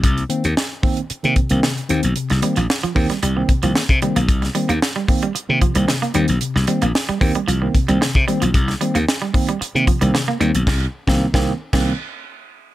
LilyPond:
<<
  \new Staff \with { instrumentName = "Tine electric piano" } { \time 4/4 \key c \minor \tempo 4 = 113 c16 <bes c'>16 <ees bes c'>16 r8. <ees bes c'>16 r8 <ees bes c'>16 c16 <ees bes c'>16 c16 r16 <ees bes c'>16 <bes c'>16 | c16 <bes c'>16 <ees bes c'>16 r8. <ees bes c'>16 r8 <ees bes c'>16 c16 <ees bes c'>16 <bes c'>16 c16 <ees bes c'>16 r16 | c16 <bes c'>16 <ees bes c'>16 r8. <ees bes c'>16 r8 <ees bes c'>16 c16 <ees bes c'>16 c16 r16 <ees bes c'>16 <bes c'>16 | c16 <bes c'>16 <ees bes c'>16 r8. <ees bes c'>16 r8 <ees bes c'>16 c16 <ees bes c'>16 c16 r16 <ees bes c'>16 <bes c'>16 |
c16 <bes c'>16 <ees bes c'>16 r8. <ees bes c'>16 r8 <ees bes c'>16 c16 <ees bes c'>16 c16 r16 <ees bes c'>16 <bes c'>16 | r8. <ees bes c'>8 <ees bes c'>8 r16 <ees bes c'>8 r4. | }
  \new Staff \with { instrumentName = "Clean electric guitar" } { \clef bass \time 4/4 \key c \minor r1 | r8 g16 f16 r16 f16 r16 g16 g16 r8 f16 r8 g16 bes16 | r8 g16 bes16 r16 g16 r16 g16 r8 f16 g16 r16 bes16 g16 r16 | r8 g16 bes16 r16 g16 r16 g16 f16 r8 g16 r8 g16 f16 |
r8 g16 bes16 r16 g16 r16 g16 r8 f16 g16 r16 bes16 g16 r16 | r1 | }
  \new Staff \with { instrumentName = "Slap bass" } { \clef bass \time 4/4 \key c \minor c,8 r16 ees,16 r4 r16 c16 r16 c,16 r8 ees,16 b,,16 | r16 c,16 r16 bes,,16 r8 ees,16 r16 c,8 r16 c,16 r16 c16 r16 b,,16 | c,8 r16 ees,16 r4 r16 c16 r16 c,16 r8 ees,16 b,,16 | r16 c,16 r16 bes,,16 r8 ees,16 r16 c,8 r16 c,16 r16 c16 r16 b,,16 |
c,8 r16 ees,16 r4 r16 c16 r16 c,16 r8 ees,16 b,,16 | c,8 r16 c,8 c,8 r16 c,8 r4. | }
  \new DrumStaff \with { instrumentName = "Drums" } \drummode { \time 4/4 <hh bd>16 hh16 hh16 hh16 sn8 <hho bd>16 hh16 hh16 hh16 <hh bd>16 hh16 sn16 hh16 hh16 hh16 | hh16 <hh sn>16 hh16 hh16 sn16 hh16 <hho bd>16 <hh sn>16 hh8 <hh bd>16 hh16 sn16 <hh bd>16 hh16 hh16 | <hh bd>16 <hh sn>16 hh16 hh16 sn8 <hho bd>16 hh16 hh8 <hh bd>16 hh16 sn16 hh16 hh16 hh16 | hh16 sn16 hh16 hh16 sn16 hh16 <hho bd>16 hh16 hh8 <hh bd>16 hh16 sn16 bd16 hh16 hh16 |
<hh bd>16 <hh sn>16 hh16 hh16 sn8 <hho bd>16 hh16 hh16 hh16 <hh bd>16 hh16 sn8 hh16 hh16 | <cymc bd sn>8. <bd sn>16 r16 <bd sn>8. <cymc bd sn>4 r4 | }
>>